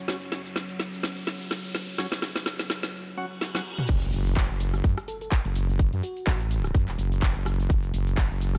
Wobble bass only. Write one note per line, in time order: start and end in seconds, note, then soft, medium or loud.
3.89 4.11 F#1 loud
4.13 4.48 F#1 medium
4.50 4.83 F#1 loud
4.84 4.95 F#2 loud
5.45 5.91 F#1 loud
5.93 6.02 F#2 medium
6.27 6.73 A1 loud
6.75 6.86 F#2 loud
6.88 6.97 E1 loud
6.98 7.34 F#1 loud
7.36 7.68 F#1 loud
7.70 7.92 F#1 medium
7.94 8.29 F#1 medium
8.31 8.58 F#1 loud